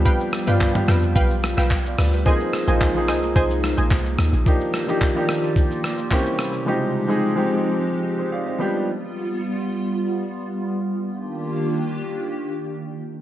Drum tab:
HH |--------------o-|----------------|----------------|----------------|
SH |xxxxxxxxxxxxxxxx|xxxxx-xxxxxxxxxx|xxxxx-xxxxxxxxxx|----------------|
CP |----x-------x---|----x-------x---|----x-------x---|----------------|
SD |--r---r---rr--r-|--r---r---r---r-|--r---r---r---r-|----------------|
T2 |-----o----------|----------------|----------------|----------------|
BD |o---o---o---o---|o---o---o---o---|o---o---o---o---|----------------|

HH |----------------|----------------|
SH |----------------|----------------|
CP |----------------|----------------|
SD |----------------|----------------|
T2 |----------------|----------------|
BD |----------------|----------------|